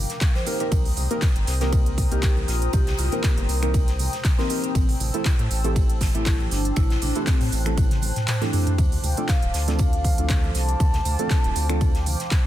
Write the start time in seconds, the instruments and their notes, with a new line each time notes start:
Already playing: analog synth pad A#4 F5 G5 D6
0.10 snare, closed hi-hat, shaker
0.21 kick, snare, clap, ride, tambourine, shaker
0.35 vibraphone C5, snare, high conga, shaker
0.46 synth stab A#3 C4 D#4 G4 A#4, analog synth pad C5 A#5 D#6, vibraphone C5, open hi-hat, tambourine, shaker
0.60 synth stab A#3 C4 D#4 G4 A#4, closed hi-hat, shaker
0.72 analog synth bass C2, kick, ride, tambourine, high conga, shaker
0.85 open hi-hat, low conga, shaker
0.97 analog synth bass C2, open hi-hat, tambourine, low conga, shaker
1.10 synth stab A#3 C4 D#4 G4 A#4, closed hi-hat, high conga, shaker
1.22 kick, snare, clap, ride, tambourine, shaker
1.36 analog synth bass G1, closed hi-hat, shaker
1.47 analog synth bass C2, snare, open hi-hat, tambourine, shaker
1.61 synth stab A#3 C4 D#4 G4 A#4, snare, closed hi-hat, high conga, shaker
1.72 kick, ride, tambourine, shaker
1.86 closed hi-hat, shaker
1.98 kick, open hi-hat, tambourine, high conga, low conga, shaker
2.11 analog synth bass C2, synth stab A#3 C4 D#4 G4 A#4, vibraphone G4, closed hi-hat, shaker
2.23 kick, snare, clap, ride, tambourine, shaker
2.37 high conga, shaker
2.48 analog synth bass A#1, vibraphone F4, snare, open hi-hat, tambourine, shaker
2.62 closed hi-hat, shaker
2.73 analog synth bass C2, vibraphone G4, kick, ride, tambourine, high conga, shaker
2.87 snare, closed hi-hat, low conga, shaker
2.98 analog synth bass C2, vibraphone F4, open hi-hat, tambourine, low conga, shaker
3.12 synth stab A#3 C4 D#4 G4 A#4, closed hi-hat, high conga, shaker
3.24 kick, snare, clap, ride, tambourine, shaker
3.37 analog synth bass G1, closed hi-hat, shaker
3.49 analog synth bass C2, open hi-hat, tambourine, shaker
3.62 synth stab A#3 C4 D#4 G4 A#4, finger snap, closed hi-hat, high conga, shaker
3.74 kick, ride, tambourine, shaker
3.88 snare, closed hi-hat, shaker
3.99 open hi-hat, tambourine, high conga, low conga, shaker
4.13 snare, closed hi-hat, shaker
4.25 kick, snare, clap, ride, tambourine, shaker
4.38 synth stab A#3 C4 D#4 G4 A#4, vibraphone C4, snare, high conga, shaker
4.50 synth stab A#3 C4 D#4 G4 A#4, open hi-hat, tambourine, shaker
4.63 vibraphone C4, closed hi-hat, shaker
4.75 analog synth bass A1, analog synth pad C5 A5 E6, kick, ride, tambourine, high conga, shaker
4.89 open hi-hat, low conga, shaker
5.00 analog synth bass A1, open hi-hat, tambourine, low conga, shaker
5.13 synth stab A3 C4 E4 G4 A4, closed hi-hat, high conga, shaker
5.25 kick, snare, clap, ride, tambourine, shaker
5.39 analog synth bass A2, closed hi-hat, shaker
5.51 analog synth bass A1, open hi-hat, tambourine, shaker
5.64 synth stab A3 C4 E4 G4 A4, closed hi-hat, high conga, shaker
5.76 kick, ride, tambourine, shaker
5.90 closed hi-hat, shaker
6.01 kick, snare, open hi-hat, tambourine, high conga, low conga, shaker
6.14 analog synth bass A1, synth stab A3 C4 E4 G4 A4, vibraphone E4, closed hi-hat, shaker
6.26 kick, snare, clap, ride, tambourine, shaker
6.39 high conga, shaker
6.51 analog synth bass G1, vibraphone D4, snare, open hi-hat, tambourine, shaker
6.65 closed hi-hat, shaker
6.76 analog synth bass A1, vibraphone E4, analog synth pad F#6, finger snap, kick, ride, tambourine, high conga, shaker
6.90 snare, closed hi-hat, low conga, shaker
7.02 analog synth bass A1, vibraphone D4, open hi-hat, tambourine, low conga, shaker
7.15 synth stab A3 C4 E4 G4 A4, vibraphone C4, closed hi-hat, high conga, shaker
7.27 vibraphone C4, kick, snare, clap, ride, tambourine, shaker
7.41 analog synth bass A2, open hi-hat, shaker
7.52 analog synth bass A1, open hi-hat, tambourine, shaker
7.65 synth stab A3 C4 E4 G4 A4, finger snap, closed hi-hat, high conga, shaker
7.78 kick, high tom, ride, tambourine, shaker
7.91 snare, closed hi-hat, high tom, shaker
8.02 open hi-hat, tambourine, high conga, low conga, shaker
8.16 snare, closed hi-hat, mid tom, shaker
8.28 snare, clap, mid tom, ride, tambourine, shaker
8.41 synth stab A3 C4 E4 G4 A4, vibraphone D4, snare, closed hi-hat, high conga, shaker
8.53 synth stab A3 C4 E4 G4 A4, vibraphone D4, mid tom, open hi-hat, tambourine, shaker
8.67 closed hi-hat, mid tom, shaker
8.78 analog synth bass D2, analog synth pad F5 A5 D6, kick, ride, tambourine, high conga, shaker
8.92 open hi-hat, low conga, shaker
9.03 analog synth bass D2, soft synth lead G5, open hi-hat, tambourine, low conga, shaker
9.17 synth stab A3 C4 D4 F4 A4, closed hi-hat, high conga, shaker
9.29 soft synth lead F5, kick, snare, clap, ride, tambourine, shaker
9.42 analog synth bass D1, closed hi-hat, shaker
9.54 analog synth bass D2, snare, open hi-hat, tambourine, shaker
9.68 synth stab A3 C4 D4 F4 A4, snare, closed hi-hat, high conga, shaker
9.79 soft synth lead F5, kick, ride, tambourine, shaker
9.93 closed hi-hat, shaker
10.04 kick, open hi-hat, tambourine, high conga, low conga, shaker
10.18 analog synth bass D2, synth stab A3 C4 D4 F4 A4, closed hi-hat, shaker
10.29 kick, snare, clap, ride, tambourine, shaker
10.43 high conga, shaker
10.54 analog synth bass C2, soft synth lead A5, snare, open hi-hat, tambourine, shaker
10.69 closed hi-hat, shaker
10.80 analog synth bass D2, analog synth pad G5, kick, ride, tambourine, high conga, shaker
10.94 snare, closed hi-hat, low conga, shaker
11.05 analog synth bass D2, open hi-hat, tambourine, low conga, shaker
11.19 synth stab A3 C4 D4 F4 A4, closed hi-hat, high conga, shaker
11.30 kick, snare, clap, ride, tambourine, shaker
11.44 analog synth bass D1, closed hi-hat, shaker
11.56 analog synth bass D2, open hi-hat, tambourine, shaker
11.69 synth stab A3 C4 D4 F4 A4, finger snap, closed hi-hat, high conga, shaker
11.81 kick, ride, tambourine, shaker
11.95 snare, closed hi-hat, shaker
12.06 open hi-hat, tambourine, high conga, low conga, shaker
12.20 snare, closed hi-hat, shaker
12.31 kick, snare, clap, ride, tambourine, shaker